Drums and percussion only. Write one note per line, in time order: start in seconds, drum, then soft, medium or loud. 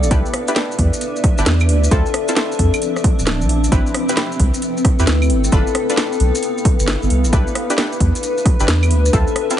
0.03 maracas medium
0.11 kick loud
0.11 closed hi-hat medium
0.11 maracas medium
0.26 maracas soft
0.34 cross-stick medium
0.34 open hi-hat loud
0.48 closed hi-hat medium
0.48 maracas medium
0.56 snare loud
0.56 closed hi-hat medium
0.56 maracas medium
0.72 maracas soft
0.79 kick medium
0.79 open hi-hat loud
0.93 closed hi-hat soft
0.93 maracas medium
1.01 closed hi-hat medium
1.01 maracas medium
1.16 maracas soft
1.24 kick loud
1.24 cross-stick soft
1.24 open hi-hat loud
1.38 maracas medium
1.46 snare loud
1.46 closed hi-hat medium
1.46 maracas medium
1.60 claves medium
1.60 maracas soft
1.69 open hi-hat loud
1.84 maracas medium
1.91 kick loud
1.91 closed hi-hat medium
1.91 maracas medium
2.06 maracas soft
2.14 cross-stick medium
2.14 open hi-hat loud
2.28 closed hi-hat medium
2.28 maracas medium
2.36 snare loud
2.36 closed hi-hat medium
2.36 maracas medium
2.52 maracas soft
2.59 kick medium
2.59 open hi-hat loud
2.74 closed hi-hat soft
2.74 claves medium
2.74 maracas medium
2.82 closed hi-hat medium
2.82 maracas medium
2.96 cross-stick medium
2.96 maracas soft
3.04 kick loud
3.04 open hi-hat loud
3.19 maracas medium
3.26 snare loud
3.26 closed hi-hat medium
3.26 maracas medium
3.41 maracas soft
3.49 open hi-hat loud
3.64 open hi-hat medium
3.64 maracas medium
3.72 kick loud
3.72 closed hi-hat medium
3.72 maracas medium
3.86 maracas soft
3.94 cross-stick medium
3.94 open hi-hat loud
4.09 closed hi-hat medium
4.09 maracas medium
4.17 snare loud
4.17 closed hi-hat medium
4.17 maracas medium
4.32 maracas soft
4.40 kick medium
4.40 open hi-hat loud
4.54 closed hi-hat soft
4.54 maracas medium
4.62 closed hi-hat medium
4.62 maracas medium
4.77 maracas soft
4.85 kick loud
4.85 cross-stick medium
4.85 open hi-hat loud
4.99 maracas medium
5.07 snare loud
5.07 closed hi-hat medium
5.07 maracas medium
5.22 claves medium
5.22 maracas soft
5.30 open hi-hat loud
5.44 maracas medium
5.52 kick loud
5.52 closed hi-hat medium
5.52 maracas medium
5.67 maracas soft
5.75 cross-stick medium
5.75 open hi-hat loud
5.90 closed hi-hat medium
5.90 maracas medium
5.97 snare loud
5.97 closed hi-hat medium
5.97 maracas medium
6.12 maracas soft
6.20 open hi-hat loud
6.35 closed hi-hat soft
6.35 maracas medium
6.43 closed hi-hat medium
6.43 maracas medium
6.58 maracas soft
6.65 kick loud
6.65 open hi-hat loud
6.79 maracas medium
6.88 snare loud
6.88 closed hi-hat medium
6.88 maracas medium
7.02 maracas soft
7.10 open hi-hat loud
7.24 maracas medium
7.33 kick loud
7.33 closed hi-hat medium
7.33 maracas medium
7.47 maracas soft
7.55 cross-stick medium
7.55 open hi-hat loud
7.70 closed hi-hat medium
7.70 maracas medium
7.78 snare loud
7.78 closed hi-hat medium
7.78 maracas medium
7.92 maracas soft
8.00 kick medium
8.00 open hi-hat loud
8.15 closed hi-hat soft
8.15 maracas medium
8.23 closed hi-hat medium
8.23 maracas medium
8.38 maracas soft
8.46 kick loud
8.46 cross-stick medium
8.46 open hi-hat loud
8.60 maracas medium
8.68 snare loud
8.68 closed hi-hat medium
8.68 maracas medium
8.83 claves medium
8.83 maracas soft
8.91 open hi-hat loud
9.06 maracas medium
9.13 kick loud
9.13 closed hi-hat medium
9.13 maracas medium
9.27 maracas soft
9.36 cross-stick medium
9.36 open hi-hat loud
9.50 closed hi-hat medium
9.50 maracas medium